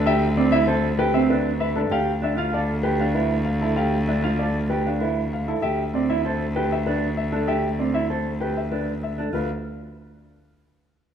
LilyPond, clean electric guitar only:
\new Staff \with { instrumentName = "Clean electric guitar" } { \time 6/4 \key d \dorian \tempo 4 = 194 g'8 r8 c'8 e'8 a'8 r8 g'8 c'8 d'8 r8 b'8 d'8 | g'8 r8 d'8 f'8 a'8 r8 g'8 d'8 e'8 r4 e'8 | g'8 r8 d'8 f'8 a'8 r8 g'8 d'8 e'8 r4 e'8 | g'8 r8 c'8 e'8 a'8 r8 g'8 r8 d'8 r4 d'8 |
g'8 r8 c'8 e'8 a'8 r8 g'8 r8 d'8 r4 d'8 | f'8 r1 r4. | }